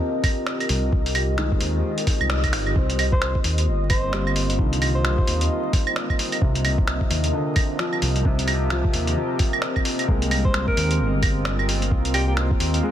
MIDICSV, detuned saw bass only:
0, 0, Header, 1, 2, 480
1, 0, Start_track
1, 0, Key_signature, -3, "minor"
1, 0, Tempo, 458015
1, 965, Time_signature, 4, 2, 24, 8
1, 13532, End_track
2, 0, Start_track
2, 0, Title_t, "Detuned saw bass"
2, 0, Program_c, 0, 39
2, 728, Note_on_c, 0, 36, 103
2, 951, Note_off_c, 0, 36, 0
2, 971, Note_on_c, 0, 36, 98
2, 1574, Note_off_c, 0, 36, 0
2, 1686, Note_on_c, 0, 39, 93
2, 1910, Note_off_c, 0, 39, 0
2, 2310, Note_on_c, 0, 36, 100
2, 2645, Note_on_c, 0, 31, 85
2, 2661, Note_off_c, 0, 36, 0
2, 2870, Note_off_c, 0, 31, 0
2, 2890, Note_on_c, 0, 36, 95
2, 3493, Note_off_c, 0, 36, 0
2, 3604, Note_on_c, 0, 39, 92
2, 3846, Note_on_c, 0, 31, 85
2, 3862, Note_off_c, 0, 39, 0
2, 4793, Note_off_c, 0, 31, 0
2, 4809, Note_on_c, 0, 36, 99
2, 5413, Note_off_c, 0, 36, 0
2, 5528, Note_on_c, 0, 39, 94
2, 5751, Note_off_c, 0, 39, 0
2, 6724, Note_on_c, 0, 36, 97
2, 7330, Note_off_c, 0, 36, 0
2, 7444, Note_on_c, 0, 39, 95
2, 7669, Note_off_c, 0, 39, 0
2, 8406, Note_on_c, 0, 36, 108
2, 8630, Note_off_c, 0, 36, 0
2, 8645, Note_on_c, 0, 36, 100
2, 9250, Note_off_c, 0, 36, 0
2, 9365, Note_on_c, 0, 39, 96
2, 9590, Note_off_c, 0, 39, 0
2, 10568, Note_on_c, 0, 36, 98
2, 11172, Note_off_c, 0, 36, 0
2, 11288, Note_on_c, 0, 39, 95
2, 11529, Note_on_c, 0, 31, 82
2, 11544, Note_off_c, 0, 39, 0
2, 12475, Note_off_c, 0, 31, 0
2, 12485, Note_on_c, 0, 36, 97
2, 13091, Note_off_c, 0, 36, 0
2, 13205, Note_on_c, 0, 39, 94
2, 13430, Note_off_c, 0, 39, 0
2, 13532, End_track
0, 0, End_of_file